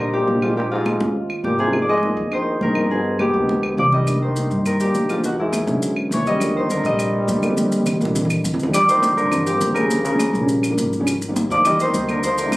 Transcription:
Already playing: upright bass A#1, upright piano G3 A#3 D4 G4, harp C5 D#5
0.13 trombone A#2, harp G4, high conga
0.27 upright bass A#1, upright piano G3 A#3 D4 F4, high conga
0.42 trombone G#2, upright piano G3 A#3 D4 F4, harp F4, claves
0.49 upright piano G3 A#3 D4 G4
0.56 trombone A#2, harp G4, high conga
0.71 trombone G#2, harp F4, high conga
0.86 high conga, claves
1.00 upright bass D#2, upright piano G#3 C4 C#4 F4, high conga
1.15 high conga
1.30 high conga, claves
1.44 upright bass G#1, trombone A#2, harp G4, high conga
1.58 trombone C3, harp G#4, high conga
1.66 upright piano G3 A#3 C#4 F4
1.73 upright piano F3 A#3 C4 D#4, high conga, claves
1.81 trombone F3, harp D5
1.88 trombone G#3, harp D#5, high conga
2.02 upright piano F3 A#3 C4 D#4, high conga
2.17 upright bass D#2
2.24 upright piano F3 A#3 C4 D4
2.32 trombone D#3, harp C5, high conga, claves
2.47 high conga
2.61 upright bass G2, trombone D#3, upright piano F3 A#3 C4 D4, harp A#4, high conga
2.75 upright piano F3 A#3 C4 D#4, claves
2.82 upright piano F3 A#3 C4 D4
2.90 trombone B2, harp G#4, high conga
3.05 high conga
3.19 trombone B2, harp G4, high conga, claves
3.33 upright bass D2, upright piano F3 G#3 B3 D4
3.49 high conga
3.63 claves
3.77 upright bass C2, trombone F3, harp D5, low conga
3.92 trombone G3, harp D#5, low conga
3.99 upright piano F3 G#3 B3 D4
4.07 upright piano D#3 G3 A#3 D4, high conga, claves, maracas
4.22 trombone D#3, harp C5, high conga
4.36 upright piano D#3 G3 A#3 D4, high conga, maracas
4.51 upright bass G2, maracas
4.57 upright piano D#3 G3 A#3 D#4
4.66 trombone D#3, harp A#4, high conga, claves, maracas
4.80 trombone A#2, harp G4, high conga, maracas
4.94 upright bass E2, upright piano D#3 G3 A#3 D4, high conga, maracas
5.09 trombone G#2, upright piano D#3 G3 A#3 D4, harp F4, high conga, claves, maracas
5.16 upright piano D#3 G3 A#3 D4
5.24 trombone B2, harp F#4, high conga, maracas
5.38 trombone G#2, harp E4, high conga
5.53 high conga, claves, maracas
5.67 upright bass B1, upright piano D3 F#3 G#3 C#4, high conga, maracas
5.82 high conga, maracas
5.96 high conga, claves
6.11 upright bass D#2, trombone E3, harp C#5, high conga, maracas
6.26 trombone G3, harp D#5, high conga, maracas
6.33 upright piano D3 F#3 G#3 C#4
6.40 upright piano D3 F3 G3 A#3, high conga, claves, maracas
6.55 trombone D#3, harp C5, high conga
6.69 upright piano D3 F3 G3 C4, trombone D3, harp A#4, high conga, maracas
6.84 upright bass A#1, trombone G3, harp D#5, maracas
6.91 upright piano D3 F3 G3 C4
6.99 high conga, claves, maracas
7.13 high conga
7.27 upright bass D#2, upright piano D3 F3 G3 A#3, high conga, maracas
7.42 upright piano D3 F3 G3 A#3, high conga, claves, maracas
7.49 upright piano D3 F3 G3 C4
7.57 high conga, maracas
7.72 maracas
7.76 high conga
7.86 low conga, claves, maracas
7.96 high conga
8.00 upright bass A#1, upright piano D3 F3 G3 A#3, maracas
8.05 low conga
8.15 low conga, maracas
8.25 low conga
8.30 claves, maracas
8.44 upright bass D#2, low conga, maracas
8.54 low conga
8.60 low conga, maracas
8.66 upright piano D3 F3 G3 C4
8.73 trombone G3, harp D5, high conga, claves, maracas
8.88 trombone D#3, harp C5, high conga, maracas
8.95 upright piano D3 F3 G3 A#3
9.03 high conga, maracas
9.16 upright bass G2, trombone D3, harp A#4, high conga, maracas
9.24 upright piano D3 F3 G3 C4
9.31 high conga, low conga, claves, maracas
9.45 trombone A#2, harp G4, high conga, maracas
9.53 upright piano D3 F3 G3 C4
9.61 upright bass D#2, high conga, maracas
9.74 trombone C#3, harp A#4, high conga, claves, maracas
9.83 upright piano D3 F3 G3 A#3
9.90 high conga, maracas
10.04 trombone C#3, harp A#4, high conga, maracas
10.12 upright piano C#3 F3 G3 A#3
10.19 high conga, claves, maracas
10.33 upright bass A#1, high conga, maracas
10.41 upright piano C#3 F3 G3 C#4
10.49 high conga, maracas
10.63 high conga, claves, maracas
10.70 upright piano C#3 F3 G3 A#3
10.77 upright bass G#1, high conga, maracas
10.93 high conga, maracas
10.99 upright piano C#3 F3 G3 C#4
11.07 high conga, claves, maracas
11.22 high conga, maracas
11.28 upright piano D#3 G3 A#3 C4
11.36 high conga, maracas
11.50 upright bass D#2, trombone F3, harp D5, high conga, maracas
11.58 upright piano D#3 G3 A#3 D#4
11.65 trombone G3, harp D#5, high conga, low conga, claves, maracas
11.80 trombone D#3, harp C5, high conga, maracas
11.86 upright piano D#3 G3 A#3 C4
11.94 upright bass D2, high conga, maracas
12.09 trombone D3, harp A#4, high conga, claves, maracas
12.16 upright piano D#3 G3 A#3 C4
12.23 trombone F3, harp C5, high conga, maracas
12.38 trombone D3, harp A#4, high conga, maracas
12.45 upright piano F3 G#3 C4 E4
12.52 high conga, claves, maracas

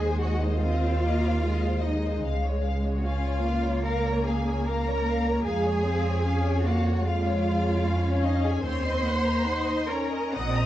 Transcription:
Already playing: double bass section D#2, viola section G#3, cello section G#4, violin section G#5
0.03 violin section C5
0.21 cello section F#4, violin section D#5 F#5
0.41 cello section D#4, violin section C5 D#5
0.61 viola section C4, cello section F4, violin section D#5 F5
0.85 violin section C5
1.04 viola section A#3, violin section D#5
1.27 violin section C5
1.44 viola section G#3, violin section D#5
1.65 violin section C5
1.81 viola section G#3, cello section D#4, violin section D#5
2.05 violin section C5
2.24 double bass section C#2, violin section F5
2.45 violin section C#5
2.64 violin section F5
2.85 violin section C#5
2.97 cello section F#4
3.04 viola section C#4, cello section F4, violin section F5
3.25 violin section C#5
3.44 viola section A#3, violin section F5
3.65 violin section C#5
3.84 cello section A#4, violin section F5 A#5
4.06 violin section C#5
4.25 cello section G#4, violin section F5 G#5
4.48 violin section C#5
4.65 cello section A#4, violin section F5 A#5
4.87 violin section C#5
5.08 violin section F5
5.26 violin section C#5
5.45 double bass section F2, viola section G#3, cello section G#4, violin section F5 G#5
5.65 violin section C#5
5.85 viola section C4, violin section F5
6.04 violin section C#5
6.24 viola section C#4, violin section F5
6.45 violin section C#5
6.64 viola section A#3, cello section F#4, violin section F5 F#5
6.86 violin section C#5
7.04 viola section G#3, cello section F4, violin section F5
7.24 violin section C#5
7.46 violin section F5
7.65 violin section C#5
7.86 viola section C#4, violin section F5
8.07 violin section C#5
8.24 cello section D#4, violin section D#5 F5
8.45 cello section G#4, violin section C#5 G#5
8.64 double bass section D#2, viola section C4, cello section C5, violin section C#5 C6
8.83 violin section D#5
9.04 viola section A#3, violin section F#5
9.24 violin section A#5
9.45 viola section D#4, violin section F#5
9.66 violin section D#5
9.88 viola section C#4, cello section A#4, violin section C#5 A#5
10.11 violin section D#5
10.33 double bass section A#1, viola section C4, cello section D#5, violin section F#5 D#6
10.55 violin section A#5

